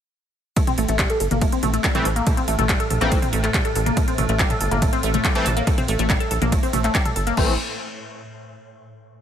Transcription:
0.56 synth drone A2, synth arpeggio sound A3, kick, closed hi-hat, ride
0.67 synth arpeggio sound C4, closed hi-hat, mid tom
0.78 analog synth bass A1, synth arpeggio sound A3, open hi-hat
0.88 analog synth bass A1, synth arpeggio sound A3, closed hi-hat
0.99 synth arpeggio sound G3, kick, clap, closed hi-hat, mid tom, ride
1.10 synth arpeggio sound A4, closed hi-hat
1.20 analog synth bass G1, synth arpeggio sound A4, open hi-hat
1.31 analog synth bass G1, synth arpeggio sound A#3, closed hi-hat, mid tom
1.42 synth arpeggio sound A3, kick, closed hi-hat, ride
1.52 synth arpeggio sound C4, closed hi-hat
1.63 analog synth bass A1, synth arpeggio sound A3, mid tom, open hi-hat
1.74 synth arpeggio sound A3, closed hi-hat
1.84 synth arpeggio sound G3, kick, clap, closed hi-hat, ride
1.95 analog polysynth E3 A3 C4, synth arpeggio sound A4, closed hi-hat, mid tom
2.05 analog synth bass A1, synth arpeggio sound A4, open hi-hat
2.16 synth arpeggio sound A#3, closed hi-hat
2.27 synth arpeggio sound A3, kick, closed hi-hat, mid tom, ride
2.37 synth arpeggio sound C4, closed hi-hat
2.48 analog synth bass A1, synth arpeggio sound A3, open hi-hat
2.59 analog synth bass A1, synth arpeggio sound A3, closed hi-hat, mid tom
2.69 synth arpeggio sound G3, kick, clap, closed hi-hat, ride
2.80 synth arpeggio sound A4, closed hi-hat
2.90 analog synth bass A#1, synth arpeggio sound A4, mid tom, open hi-hat
3.01 analog synth bass A#1, analog polysynth E3 A3 C4, synth arpeggio sound A#3, closed hi-hat
3.11 synth arpeggio sound A3, kick, closed hi-hat, ride
3.22 synth arpeggio sound C4, mid tom, open hi-hat
3.33 analog synth bass A1, synth arpeggio sound A3, open hi-hat
3.44 synth arpeggio sound A3, clap, closed hi-hat
3.54 synth arpeggio sound G3, kick, clap, closed hi-hat, mid tom, ride
3.65 synth arpeggio sound A4, closed hi-hat
3.75 analog synth bass A1, synth arpeggio sound A4, open hi-hat
3.86 synth arpeggio sound A#3, closed hi-hat, mid tom
3.97 synth arpeggio sound A3, kick, closed hi-hat, ride
4.08 synth arpeggio sound C4, closed hi-hat
4.18 analog synth bass A1, synth arpeggio sound A3, mid tom, open hi-hat
4.29 analog synth bass A1, synth arpeggio sound A3, closed hi-hat
4.39 synth arpeggio sound G3, kick, clap, closed hi-hat, ride
4.50 synth arpeggio sound A4, closed hi-hat, mid tom
4.61 analog synth bass G1, synth arpeggio sound A4, open hi-hat
4.71 analog synth bass G1, synth arpeggio sound A#3, closed hi-hat
4.82 synth arpeggio sound A3, kick, closed hi-hat, mid tom, ride
4.93 synth arpeggio sound C4, closed hi-hat
5.03 analog synth bass A1, synth arpeggio sound A3, open hi-hat
5.14 synth arpeggio sound A3, closed hi-hat, mid tom
5.24 synth arpeggio sound G3, kick, clap, closed hi-hat, ride
5.35 analog polysynth E3 A3 C4, synth arpeggio sound A4, closed hi-hat
5.46 analog synth bass A1, synth arpeggio sound A4, mid tom, open hi-hat
5.57 synth arpeggio sound A#3, closed hi-hat
5.67 synth arpeggio sound A3, kick, closed hi-hat, ride
5.78 synth arpeggio sound C4, closed hi-hat, mid tom
5.88 analog synth bass A1, synth arpeggio sound A3, open hi-hat
5.99 analog synth bass A1, synth arpeggio sound A3, closed hi-hat
6.10 synth arpeggio sound G3, kick, clap, closed hi-hat, mid tom, ride
6.20 synth arpeggio sound A4, closed hi-hat
6.31 analog synth bass A#1, synth arpeggio sound A4, open hi-hat
6.42 analog synth bass A#1, synth arpeggio sound A#3, closed hi-hat, mid tom
6.52 synth arpeggio sound A3, kick, closed hi-hat, ride
6.63 synth arpeggio sound C4, open hi-hat
6.73 analog synth bass A1, synth arpeggio sound A3, mid tom, open hi-hat
6.84 synth arpeggio sound A3, clap, closed hi-hat
6.95 synth arpeggio sound G3, kick, clap, closed hi-hat, ride
7.05 synth arpeggio sound A4, closed hi-hat, mid tom
7.16 analog synth bass G1, synth arpeggio sound A4, open hi-hat
7.27 synth arpeggio sound A#3, closed hi-hat
7.37 analog synth bass A1, analog polysynth E3 A3 C4, synth arpeggio sound A3, kick, crash

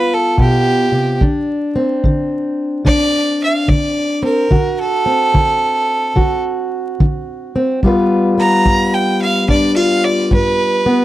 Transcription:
Already playing: steel-string acoustic guitar G2 B3 F4, fiddle B4
0.14 fiddle A4
0.37 steel-string acoustic guitar B2, fiddle G4, kick
0.92 steel-string acoustic guitar C3
1.21 steel-string acoustic guitar D3 D4, kick
1.76 steel-string acoustic guitar C4
2.04 steel-string acoustic guitar D3, kick
2.85 steel-string acoustic guitar D3 D4, fiddle D5, kick
3.44 fiddle F5
3.68 steel-string acoustic guitar D3, fiddle D5, kick
4.23 steel-string acoustic guitar C4, fiddle A#4
4.51 steel-string acoustic guitar D3 F#4, kick
4.80 fiddle A4
5.06 steel-string acoustic guitar C4
5.34 steel-string acoustic guitar D3, kick
6.16 steel-string acoustic guitar D3 F#4, kick
7.00 steel-string acoustic guitar D3, kick
7.56 steel-string acoustic guitar C4
7.83 steel-string acoustic guitar G2 G3 B3 F4, kick
7.87 steel-string acoustic guitar B4
8.38 steel-string acoustic guitar B3, fiddle A#5
8.65 steel-string acoustic guitar G2, kick
8.94 fiddle G5
9.22 fiddle F5
9.48 steel-string acoustic guitar G2 D4, fiddle D5, kick
9.76 steel-string acoustic guitar F4, fiddle F5
10.05 fiddle D5
10.31 steel-string acoustic guitar G2, fiddle B4, kick
10.86 steel-string acoustic guitar B3

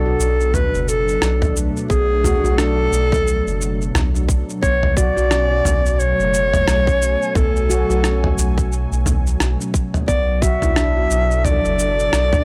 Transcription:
Already playing: analog synth bass B1, analog synth pad B2 F#3, clarinet A4
0.06 handpan F#4
0.20 analog synth bass B1, cabasa
0.40 cabasa
0.49 analog synth pad D4
0.54 clarinet B4, mid tom, cabasa
0.74 analog synth bass F#1, cabasa
0.82 clarinet B4
0.88 clarinet A4, cabasa
1.08 cabasa
1.22 analog synth bass B1, cross-stick, cabasa
1.27 analog synth pad A3
1.42 handpan D4, kick, mid tom, cabasa
1.56 cabasa
1.77 cabasa
1.90 analog synth bass B1, handpan B3, clarinet G#4, kick, cabasa
2.24 handpan F#4, mid tom, cabasa
2.44 analog synth bass B1, handpan F#4, cabasa
2.58 handpan D4, clarinet A4, cross-stick, cabasa
2.78 handpan F#4
2.92 analog synth bass B1, cabasa
3.12 kick, mid tom, cabasa
3.27 cabasa
3.46 analog synth bass F#1, cabasa
3.61 cabasa
3.82 cabasa
3.95 analog synth bass B1, cross-stick, mid tom, cabasa
4.14 handpan D4, cabasa
4.29 kick, cabasa
4.50 cabasa
4.62 analog synth bass B1, handpan B3, clarinet C#5, kick, cabasa
4.83 mid tom
4.97 handpan F#4, clarinet D5, kick, cabasa
5.17 analog synth bass B1, handpan F#4, cabasa
5.31 handpan C#4, cross-stick, cabasa
5.51 handpan F#4
5.65 analog synth bass B1, mid tom, cabasa
5.86 cabasa
5.92 analog synth pad A3
5.99 clarinet C#5, cabasa
6.19 analog synth bass F#1, cabasa
6.34 cabasa
6.54 mid tom, cabasa
6.67 analog synth bass B1, analog synth pad G#5, cross-stick, cabasa
6.87 handpan C#4, kick, cabasa
7.02 cabasa
7.22 cabasa
7.35 analog synth bass B1, handpan B3, clarinet A4, kick, mid tom, cabasa
7.56 cabasa
7.70 handpan F#4, cabasa
7.90 analog synth bass B1, handpan F#4, cabasa
8.04 handpan C#4, cross-stick, cabasa
8.24 handpan F#4, mid tom
8.38 analog synth bass B1, cabasa
8.58 kick, cabasa
8.72 cabasa
8.92 analog synth bass B1, cabasa
9.06 mid tom, cabasa
9.27 cabasa
9.40 analog synth bass B1, cross-stick, cabasa
9.60 handpan C#4, cabasa
9.74 kick, cabasa
9.94 mid tom, cabasa
10.08 analog synth bass B1, handpan B3, clarinet D5, kick, cabasa
10.42 handpan F#4, clarinet E5, kick, cabasa
10.62 analog synth bass B1, handpan E4, mid tom, cabasa
10.76 analog synth pad D4, handpan D4, cross-stick, cabasa
10.97 handpan F#4
11.09 analog synth bass B1, analog synth pad A4, cabasa
11.31 cabasa
11.45 clarinet D5, mid tom, cabasa
11.65 analog synth bass F#1, cabasa
11.79 cabasa
11.99 cabasa
12.13 analog synth bass B1, cross-stick, cabasa
12.33 handpan D4, kick, mid tom, cabasa

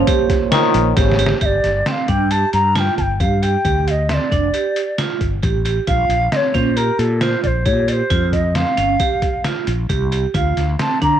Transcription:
Already playing: trombone F3, tine electric piano A#3 F4 C5 C#5
0.07 vibraphone G4, kick, closed hi-hat
0.30 kick, snare, closed hi-hat
0.52 trombone D#3, vibraphone F4, snare, closed hi-hat
0.74 fretless electric bass A#1, closed hi-hat
0.97 fretless electric bass G#1, trombone C#3, vibraphone G4, kick, snare, closed hi-hat
1.11 snare
1.19 vibraphone G4, closed hi-hat
1.26 snare
1.41 fretless electric bass G1, vibraphone G4, flute E5, kick, closed hi-hat
1.45 flute D5
1.64 fretless electric bass G1, snare, closed hi-hat
1.86 vibraphone C4, flute G5, snare, closed hi-hat
1.91 flute F5
2.08 fretless electric bass G2, vibraphone D4, flute G5, kick, closed hi-hat
2.31 vibraphone G4, flute A5, closed hi-hat
2.53 fretless electric bass G2, flute A#5, closed hi-hat
2.75 vibraphone F4, flute A5, snare, closed hi-hat
2.79 flute G5
2.97 fretless electric bass G1, flute G5 A5, kick, closed hi-hat
3.20 fretless electric bass G2, vibraphone G4, flute F5, kick, closed hi-hat
3.42 vibraphone G4, flute G5, closed hi-hat
3.65 fretless electric bass D2, vibraphone G4, kick, closed hi-hat
3.87 flute D#5 F5, closed hi-hat
4.09 vibraphone C4, flute E5, snare, closed hi-hat
4.14 flute D5
4.32 fretless electric bass F1, vibraphone D4, kick, closed hi-hat
4.54 vibraphone G4, closed hi-hat
4.76 closed hi-hat
4.98 vibraphone F4, snare, closed hi-hat
5.21 fretless electric bass G1, kick, closed hi-hat
5.43 fretless electric bass A1, vibraphone G4, kick, closed hi-hat
5.65 vibraphone G4, closed hi-hat
5.87 fretless electric bass A#1, vibraphone F4, flute F5, kick, closed hi-hat
6.09 fretless electric bass A#1, closed hi-hat
6.32 vibraphone C4, flute D#5, snare, closed hi-hat
6.36 flute C#5
6.54 fretless electric bass A#2, vibraphone C#4, flute C5, kick, snare, closed hi-hat
6.76 vibraphone G4, flute A#4, closed hi-hat
6.98 fretless electric bass A#2, flute A4, closed hi-hat
7.21 vibraphone F4, flute C5, snare, closed hi-hat
7.43 fretless electric bass A#1, flute C5 D5, kick, closed hi-hat
7.66 fretless electric bass A#2, vibraphone G4, flute C#5, kick, closed hi-hat
7.88 vibraphone G4, flute D5, closed hi-hat
7.92 flute C5
8.10 fretless electric bass F2, vibraphone F4, kick, closed hi-hat
8.33 flute D#5, kick, closed hi-hat
8.55 vibraphone C4, flute F5, snare, closed hi-hat
8.77 fretless electric bass G1, vibraphone C#4, closed hi-hat
9.00 vibraphone G4, kick, closed hi-hat
9.22 kick, closed hi-hat
9.44 vibraphone F4, snare, closed hi-hat
9.67 fretless electric bass A#1, closed hi-hat
9.89 fretless electric bass C2, vibraphone G4, kick, closed hi-hat
10.12 vibraphone G4, closed hi-hat
10.34 fretless electric bass D2, vibraphone F4, flute F5, kick, closed hi-hat
10.57 fretless electric bass D2, snare, closed hi-hat
10.79 vibraphone C4, flute A5, snare, closed hi-hat
11.02 fretless electric bass D3, vibraphone D4, flute A#5, kick, closed hi-hat

